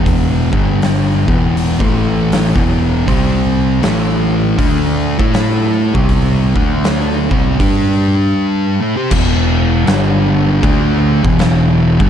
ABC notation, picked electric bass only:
X:1
M:4/4
L:1/16
Q:"Swing" 1/4=79
K:Em
V:1 name="Picked electric bass" clef=bass
E,,,2 G,,,4 E,,,3 A,,,4 E,,,3 | C,,4 A,,,4 D,,3 A,,4 C,,- | C,,2 D,,4 C,,2 G,,4 z4 | E,,,4 G,,,4 D,,3 E,,,4 G,,, |]